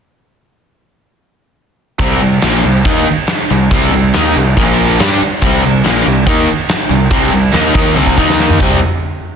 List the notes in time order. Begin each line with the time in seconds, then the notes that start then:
1.99 C2 C3 G3 C4, kick, crash
2.21 C2 C3 G3
2.42 A#1 A#2 F3 A#3, snare, crash
2.64 C2 C3 G3
2.85 D#2 D#3 A#3 D#4, kick, crash
3.27 snare, crash
3.51 C2 C3 G3
3.71 C2 C3 G3 C4, kick, crash
3.92 C2 C3 G3
4.13 D#2 D#3 A#3 D#4, snare, crash
4.36 C2 C3 G3
4.57 A#1 A#2 F3 A#3, kick, crash
4.90 snare
4.99 G2 G3 D4 G4, snare, crash
5.21 muted picked electric bass stroke, muted overdriven electric guitar stroke
5.42 C2 C3 G3 C4, kick, crash
5.63 C2 C3 G3
5.84 A#1 A#2 F3 A#3, snare, crash
6.06 C2 C3 G3
6.27 D#2 D#3 A#3 D#4, kick, crash
6.69 snare, crash
6.89 C2 C3 G3
7.10 C2 C3 G3 C4, kick, crash
7.32 C2 C3 G3
7.53 D#2 D#3 A#3 D#4, snare, crash
7.74 D#2 D#3 A#3 D#4, kick
7.96 C2 C3 G3 C4, high tom
8.07 kick
8.18 D#2 D#3 A#3 D#4, kick
8.30 snare
8.40 snare
8.50 mid tom
8.60 C2 C3 G3 C4, kick, crash